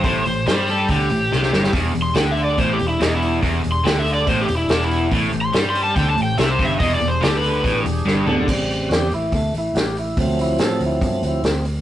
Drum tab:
CC |----------------|----------------|----------------|----------------|
HH |o-o-o-o-o-o-----|o-o-o-o-o-o-o-o-|o-o-o-o-o-o-o-o-|o-o-o-o-o-o-o-o-|
SD |----o-------oooo|----o-------o---|----o-------oo--|----o-------o---|
T2 |----------------|----------------|----------------|----------------|
FT |----------------|----------------|----------------|----------------|
BD |o-------o-------|o-------o-------|o-------o-------|o-------o-----o-|

CC |----------------|x---------------|----------------|
HH |o-o-o-o-o-o-----|--o-o-o-o-o-o-o-|o-o-o-o-o-o-o-o-|
SD |----o-------o---|----o-------o---|----o-------o---|
T2 |--------------o-|----------------|----------------|
FT |---------------o|----------------|----------------|
BD |o-------o-------|o-------o-------|o-------o-------|